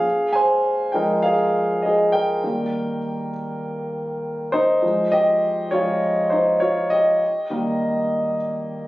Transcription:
Already playing: G#4 F5
0.33 C5 G#5
0.92 F3 G#3 D#4 A#4 G5
1.22 G#4 F5
1.82 G#4 D#5
2.12 A#4 G5
2.43 D#3 G3 A#3
4.52 D#4 C5
4.82 F3 G#3 D#4
5.12 G4 D#5
5.71 F3 G#3 D#4 F4 C#5
6.30 D#4 C5
6.60 F4 C#5
6.90 G4 D#5
7.50 D#3 G3 A#3

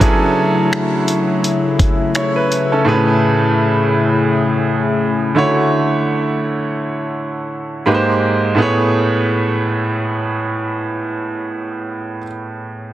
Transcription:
Already playing: D4 B4, downlifter
0.00 C#3 F#3 A3 C#4 E4 G#4 A4, kick, closed hi-hat
0.73 finger snap
1.08 closed hi-hat
1.44 closed hi-hat
1.79 kick, closed hi-hat
2.15 E4 C#5, finger snap, closed hi-hat
2.36 B4
2.52 closed hi-hat
2.72 C#4 A4
2.85 A2 A3 C4 G#4 B4
2.93 C#4
5.35 D3 A3 C#4 E4 F#4 C#5
7.86 G#2 G#3 A#3 G4 B4
7.94 C5
8.55 A2 A3 B3
8.60 G#4 C#5

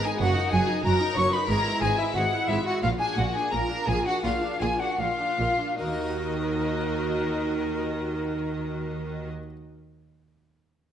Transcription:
Already playing: G#2 B3 D#4 G#4
0.04 D#4 G#4 G#5
0.19 F#1 F#2 A#3 D#4 F#4 F#5
0.23 A#4
0.36 D#4
0.51 F#1 F#2 F#4 G#4 G#5
0.68 D#4
0.84 F#1 F#2 F#4 A#4 A#5
1.00 D#4
1.15 F#1 F#2 F#4 C#5 C#6
1.32 D#4 B4 B5
1.48 G#1 G#2 G#3 B3 E4 G#4 A#4 A#5
1.66 E4
1.81 G#1 G#2 G#4 G#5
1.98 E4 E5
2.15 G#1 G#2 F#4 G#4 F#5
2.32 E4
2.48 G#1 G#2 E4 G#4 E5
2.65 E4 F#4 F#5
2.82 A#1 A#2 F4 F5
3.00 D4 G#4 G#5
3.17 A#1 A#2 F4 F#4 F#5
3.34 D4 G#4 G#5
3.52 A#1 A#2 F4 A#4 A#5
3.70 D4
3.88 A#1 A#2 F4 G#4 G#5
4.05 D4 F#4 F#5
4.23 A#1 A#2 A#3 D4 F4 G#4 F5
4.42 D4
4.61 A#1 A#2 F4 G#4 G#5
4.80 D4 F#4 F#5
4.98 A#1 A#2 F4 F5
5.19 D4
5.38 A#1 A#2 F4
5.58 D4
5.77 D#2 D#3 D#4 F#4 A#4 D#5
5.86 A#3
5.93 D#4
6.00 F#4
6.07 D#5

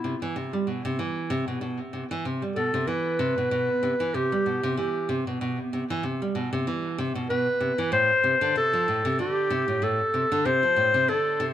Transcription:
Already playing: E4
0.04 C3
0.22 E3
0.36 C3
0.53 G3
0.67 B2
0.85 C3
0.99 E3
1.30 C3
1.48 B2
1.61 B2
1.93 C3
2.11 E3
2.25 C3
2.42 G3
2.56 B2 A4
2.74 C3
2.87 E3 B4
3.19 C3
3.38 B2
3.51 B2
3.83 C3
4.00 E3
4.14 C3 G4
4.32 G3
4.46 B2
4.63 C3
4.77 E3 G4
5.09 C3
5.27 B2
5.41 B2
5.73 C3
5.90 E3
6.03 C3
6.22 G3
6.35 B2
6.53 C3
6.67 E3
6.98 C3
7.15 B2
7.29 B2 B4
7.60 C3
7.78 E3
7.92 A2 C5
8.24 C3
8.41 D3
8.56 C3 A4
8.73 F3
8.88 A2
9.05 C3
9.19 D3 G4
9.50 C3
9.68 A2
9.82 A2 A4
10.14 C3
10.32 D3
10.45 C3 C5
10.63 F3
10.76 A2
10.94 C3
11.08 D3 A4
11.40 C3

